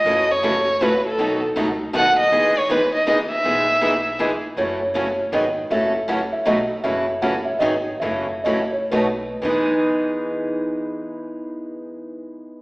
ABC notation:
X:1
M:3/4
L:1/16
Q:"Swing" 1/4=159
K:E
V:1 name="Celesta"
z12 | z12 | z12 | z12 |
c8 d4 | e4 f2 e2 d4 | e4 f2 e2 d4 | e4 d2 c2 B4 |
B12- | B12 |]
V:2 name="Violin"
d2 c6 B2 A2- | A2 z6 f2 d2- | d2 c2 B2 d2 d2 e2- | e8 z4 |
z12 | z12 | z12 | z12 |
z12 | z12 |]
V:3 name="Steel-string acoustic guitar"
[F,CEA]2 z2 [F,CEA] z3 [F,CEA] z3 | [B,,D,F,B,DA]2 z2 [B,,D,F,B,DA] z3 [B,,D,F,B,DA] z3 | [E,G,B,DG]2 z2 [E,G,B,DG] z3 [E,G,B,DG] z3 | [E,G,B,DG]2 z2 [E,G,B,DG] z3 [E,G,B,DG] z3 |
[F,CEA]2 z2 [F,CEA] z3 [D,F,B,DG] z3 | [F,CEA]2 z2 [F,CEA] z3 [B,,F,A,DFB] z3 | [F,CEA]2 z2 [F,CEA] z3 [D,F,B,DG] z3 | [F,CEA]2 z2 [F,CEA] z3 [B,,F,A,DFB] z3 |
[E,G,B,DG]12- | [E,G,B,DG]12 |]
V:4 name="Steel-string acoustic guitar"
[C,E,A,CF]2 z2 [C,E,A,CF] z3 [C,E,A,CF] z3 | [B,,F,A,DF]2 z2 [B,,F,A,DF] z3 [B,,F,A,DF] z3 | [E,B,DG]2 z2 [E,B,DG] z3 [E,B,DG] z3 | [E,B,DG]2 z2 [E,B,DG] z3 [E,B,DG] z3 |
[C,E,A,CF]2 z2 [C,E,A,CF] z3 [D,F,B,DG] z3 | [C,E,A,CF]2 z2 [C,E,A,CF] z3 [B,,F,A,DF] z3 | [C,E,A,CF]2 z2 [C,E,A,CF] z3 [D,F,B,DG] z3 | [C,E,A,CF]2 z2 [C,E,A,CF] z3 [B,,F,A,DF] z3 |
[E,B,DG]12- | [E,B,DG]12 |]
V:5 name="Upright bass" clef=bass
F,,12 | B,,,4 C,,4 D,,4 | E,,12 | B,,,12 |
F,,,8 G,,,4 | F,,,8 B,,,4 | F,,,8 G,,,4 | F,,,8 B,,,4 |
E,,12- | E,,12 |]